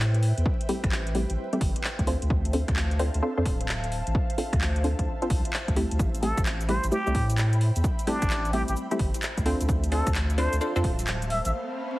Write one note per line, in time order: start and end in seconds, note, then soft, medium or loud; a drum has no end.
0.00 0.33 A2 loud
0.00 2.04 B4 medium
0.00 9.42 C5 medium
0.00 2.04 E5 medium
0.00 2.04 G5 medium
0.14 closed hi-hat medium
0.23 open hi-hat medium
0.37 0.44 E2 loud
0.37 closed hi-hat medium
0.46 kick loud
0.61 closed hi-hat soft
0.69 0.82 G3 medium
0.69 0.82 A3 medium
0.69 0.82 C4 medium
0.69 0.82 E4 medium
0.69 0.82 G4 medium
0.69 open hi-hat loud
0.84 1.25 A1 medium
0.84 finger snap medium
0.84 kick loud
0.84 closed hi-hat medium
0.92 clap loud
1.07 closed hi-hat soft
1.15 1.49 G3 medium
1.15 1.49 A3 medium
1.15 1.49 C4 medium
1.15 1.49 E4 medium
1.15 1.49 G4 medium
1.15 open hi-hat medium
1.30 1.36 A1 medium
1.30 closed hi-hat medium
1.53 1.60 G3 medium
1.53 1.60 A3 medium
1.53 1.60 C4 medium
1.53 1.60 E4 medium
1.53 1.60 G4 loud
1.53 closed hi-hat soft
1.61 1.73 G1 medium
1.61 kick loud
1.61 open hi-hat loud
1.76 closed hi-hat medium
1.84 clap loud
1.99 2.16 D2 medium
1.99 kick medium
1.99 closed hi-hat soft
2.07 2.51 C4 medium
2.07 2.51 D4 medium
2.07 2.51 F4 medium
2.07 2.51 A4 medium
2.07 2.51 C5 loud
2.07 11.99 E5 medium
2.07 5.96 F5 medium
2.07 5.96 A5 medium
2.07 open hi-hat medium
2.22 2.29 D2 medium
2.22 closed hi-hat medium
2.30 2.63 D2 medium
2.30 kick loud
2.45 closed hi-hat soft
2.53 2.72 C4 medium
2.53 2.72 D4 medium
2.53 2.72 F4 medium
2.53 2.72 A4 medium
2.53 2.72 C5 medium
2.53 open hi-hat loud
2.68 3.09 D2 medium
2.68 finger snap medium
2.68 kick loud
2.68 closed hi-hat medium
2.76 clap loud
2.91 closed hi-hat soft
2.99 3.18 C4 medium
2.99 3.18 D4 medium
2.99 3.18 F4 medium
2.99 3.18 A4 medium
2.99 3.18 C5 medium
2.99 finger snap soft
2.99 open hi-hat medium
3.14 3.21 D2 medium
3.14 closed hi-hat medium
3.22 3.35 C4 medium
3.22 3.35 D4 medium
3.22 3.35 F4 medium
3.22 3.35 A4 medium
3.22 3.35 C5 loud
3.37 3.44 F2 medium
3.37 3.52 C4 loud
3.37 3.52 D4 medium
3.37 3.52 F4 medium
3.37 3.52 A4 medium
3.37 3.52 C5 loud
3.46 4.02 D1 loud
3.46 kick loud
3.46 open hi-hat loud
3.61 closed hi-hat medium
3.69 clap loud
3.84 closed hi-hat soft
3.92 open hi-hat medium
4.07 4.13 A1 medium
4.07 closed hi-hat medium
4.15 kick loud
4.30 closed hi-hat soft
4.38 4.51 C4 medium
4.38 4.51 D4 medium
4.38 4.51 F4 medium
4.38 4.51 A4 medium
4.38 4.51 C5 medium
4.38 open hi-hat loud
4.53 4.94 D2 medium
4.53 finger snap medium
4.53 kick loud
4.53 closed hi-hat medium
4.61 clap loud
4.76 closed hi-hat soft
4.84 5.19 C4 medium
4.84 5.19 D4 medium
4.84 5.19 F4 medium
4.84 5.19 A4 medium
4.84 5.19 C5 medium
4.84 open hi-hat medium
4.99 5.05 D2 medium
4.99 kick medium
4.99 closed hi-hat medium
5.22 5.29 C4 medium
5.22 5.29 D4 medium
5.22 5.29 F4 medium
5.22 5.29 A4 medium
5.22 5.29 C5 loud
5.22 closed hi-hat soft
5.30 5.42 C2 medium
5.30 kick loud
5.30 open hi-hat loud
5.45 closed hi-hat medium
5.53 clap loud
5.68 5.85 D2 medium
5.68 kick medium
5.68 closed hi-hat soft
5.76 6.21 G3 loud
5.76 6.21 A3 medium
5.76 6.21 C4 medium
5.76 6.21 E4 medium
5.76 6.21 G4 loud
5.76 open hi-hat medium
5.91 5.98 D2 medium
5.91 closed hi-hat medium
5.99 6.32 A1 loud
5.99 9.42 G5 medium
5.99 9.42 B5 medium
5.99 kick loud
5.99 shaker medium
6.14 closed hi-hat medium
6.14 shaker soft
6.22 6.41 G3 medium
6.22 6.41 A3 medium
6.22 6.41 C4 medium
6.22 6.41 E4 medium
6.22 6.41 G4 medium
6.22 6.40 A4 medium
6.22 open hi-hat medium
6.37 6.79 A1 medium
6.37 finger snap medium
6.37 kick loud
6.37 closed hi-hat medium
6.37 shaker medium
6.46 clap loud
6.46 shaker medium
6.61 closed hi-hat soft
6.61 shaker soft
6.69 6.87 G3 medium
6.69 6.87 A3 medium
6.69 6.87 C4 medium
6.69 6.87 E4 medium
6.69 6.87 G4 loud
6.69 6.86 C5 medium
6.69 finger snap soft
6.69 open hi-hat medium
6.84 6.90 A1 medium
6.84 closed hi-hat medium
6.84 shaker medium
6.92 7.04 G3 medium
6.92 7.04 A3 medium
6.92 7.04 C4 medium
6.92 7.04 E4 medium
6.92 7.04 G4 loud
6.92 7.30 G4 medium
6.92 shaker medium
7.07 7.13 C2 medium
7.07 7.21 G3 loud
7.07 7.21 A3 medium
7.07 7.21 C4 medium
7.07 7.21 E4 medium
7.07 7.21 G4 loud
7.07 shaker soft
7.15 7.71 A2 loud
7.15 kick loud
7.15 open hi-hat loud
7.30 closed hi-hat medium
7.30 shaker medium
7.38 clap loud
7.38 shaker medium
7.53 closed hi-hat medium
7.53 shaker soft
7.61 open hi-hat medium
7.76 7.82 E2 loud
7.76 closed hi-hat medium
7.76 shaker medium
7.84 kick loud
7.84 shaker medium
7.99 closed hi-hat medium
7.99 shaker soft
8.07 8.20 G3 medium
8.07 8.20 A3 medium
8.07 8.20 C4 medium
8.07 8.52 D4 medium
8.07 8.20 E4 medium
8.07 8.20 G4 medium
8.07 open hi-hat loud
8.22 8.63 A1 medium
8.22 finger snap medium
8.22 kick loud
8.22 closed hi-hat medium
8.22 shaker medium
8.30 clap loud
8.30 shaker medium
8.45 closed hi-hat soft
8.45 shaker soft
8.53 8.88 G3 medium
8.53 8.88 A3 medium
8.53 8.88 C4 medium
8.53 8.88 E4 medium
8.53 8.88 G4 medium
8.53 8.63 G4 medium
8.53 open hi-hat medium
8.68 8.75 A1 medium
8.68 8.73 G4 medium
8.68 closed hi-hat medium
8.68 shaker medium
8.76 shaker medium
8.91 8.98 G3 medium
8.91 8.99 A3 medium
8.91 8.98 C4 medium
8.91 8.98 E4 medium
8.91 8.98 G4 loud
8.91 closed hi-hat soft
8.91 shaker soft
8.99 9.11 G1 medium
8.99 kick loud
8.99 open hi-hat loud
9.14 closed hi-hat medium
9.14 shaker medium
9.23 clap loud
9.23 shaker medium
9.37 9.54 D2 medium
9.37 kick medium
9.37 closed hi-hat medium
9.37 shaker soft
9.46 9.90 C4 medium
9.46 9.90 D4 medium
9.46 9.90 F4 medium
9.46 9.90 A4 medium
9.46 9.90 C5 loud
9.46 11.99 C5 medium
9.46 11.99 F5 medium
9.46 11.28 A5 medium
9.46 open hi-hat medium
9.61 9.67 D2 medium
9.61 closed hi-hat medium
9.61 shaker medium
9.69 10.02 D2 loud
9.69 kick loud
9.69 riser medium
9.69 shaker medium
9.84 closed hi-hat medium
9.84 shaker soft
9.92 10.10 C4 medium
9.92 10.10 D4 medium
9.92 10.10 F4 medium
9.92 10.09 A4 medium
9.92 10.10 A4 medium
9.92 10.10 C5 medium
9.92 open hi-hat loud
10.07 10.48 D2 medium
10.07 finger snap medium
10.07 kick medium
10.07 closed hi-hat medium
10.07 shaker medium
10.15 clap loud
10.15 shaker medium
10.30 closed hi-hat soft
10.30 shaker soft
10.38 10.56 C4 medium
10.38 10.56 D4 medium
10.38 10.56 F4 medium
10.38 10.56 A4 medium
10.38 10.55 C5 medium
10.38 10.56 C5 loud
10.38 finger snap soft
10.38 open hi-hat medium
10.53 10.59 D2 medium
10.53 closed hi-hat medium
10.53 shaker medium
10.61 10.74 C4 medium
10.61 10.74 D4 medium
10.61 10.74 F4 medium
10.61 10.74 A4 medium
10.61 10.74 C5 loud
10.61 shaker medium
10.76 10.82 F2 medium
10.76 10.90 C4 loud
10.76 10.90 D4 medium
10.76 10.90 F4 medium
10.76 10.90 A4 medium
10.76 10.90 C5 loud
10.76 shaker soft
10.84 11.40 D1 loud
10.84 kick loud
10.84 open hi-hat loud
10.99 closed hi-hat medium
10.99 shaker medium
11.07 clap loud
11.07 shaker medium
11.22 closed hi-hat medium
11.22 shaker soft
11.30 11.40 E5 medium
11.30 11.99 B5 medium
11.30 open hi-hat medium
11.45 11.52 A1 loud
11.45 11.50 E5 medium
11.45 closed hi-hat medium
11.45 shaker medium